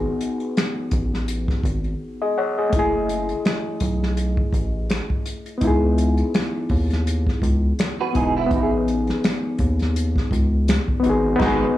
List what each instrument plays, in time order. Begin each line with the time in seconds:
Already playing: reed electric piano B3 D#4 F#4 G#4
0.21 closed hi-hat
0.40 closed hi-hat
0.57 finger snap, snare, closed hi-hat
0.91 analog synth bass A1, kick, closed hi-hat
1.14 snare
1.28 closed hi-hat
1.48 kick, snare
1.64 analog synth bass G#1, kick, closed hi-hat
1.84 closed hi-hat
2.22 reed electric piano G#4 D#5
2.38 reed electric piano C#5 F#5
2.58 reed electric piano G#4 D#5
2.69 analog synth bass F#1, reed electric piano A3 C#4, kick, closed hi-hat
2.76 reed electric piano E4 G#4
3.09 closed hi-hat
3.29 closed hi-hat
3.45 finger snap, snare, closed hi-hat
3.80 analog synth bass B1, kick, closed hi-hat
4.03 snare
4.17 closed hi-hat
4.37 kick
4.53 analog synth bass A1, kick, closed hi-hat
4.90 finger snap, snare, closed hi-hat
5.10 kick
5.26 closed hi-hat
5.46 closed hi-hat
5.58 reed electric piano B3 D#4, kick, closed hi-hat
5.62 analog synth bass C#2, reed electric piano E4
5.67 reed electric piano G#4
5.98 closed hi-hat
6.17 closed hi-hat
6.34 finger snap, snare, closed hi-hat
6.69 analog synth bass D#2, kick, open hi-hat
6.90 snare, closed hi-hat
7.07 closed hi-hat
7.27 kick, snare
7.42 analog synth bass C#2, kick, closed hi-hat
7.79 finger snap, snare, closed hi-hat
8.01 clean electric guitar F#4 B4
8.13 analog synth bass E1, reed electric piano B3 D#4 E4, clean electric guitar D#4 G#4, kick, closed hi-hat
8.18 reed electric piano F#4
8.37 clean electric guitar B3 E4
8.46 reed electric piano B3 C#4
8.51 analog synth bass A1, reed electric piano D#4, kick, closed hi-hat
8.56 reed electric piano F#4
8.63 reed electric piano G#4
8.88 closed hi-hat
9.07 snare, closed hi-hat
9.24 finger snap, snare, closed hi-hat
9.58 analog synth bass D#2, kick, closed hi-hat
9.79 snare, closed hi-hat
9.96 closed hi-hat
10.16 kick, snare
10.31 analog synth bass C#2, kick, closed hi-hat
10.68 finger snap, snare, closed hi-hat
10.88 kick
11.00 reed electric piano B3 D#4, closed hi-hat
11.06 analog synth bass G#1, reed electric piano F#4 G#4
11.36 reed electric piano B3 D#4, crash
11.40 analog synth bass G#1, clean electric guitar G#3 D#4, reed electric piano F#4, kick, snare
11.45 reed electric piano G#4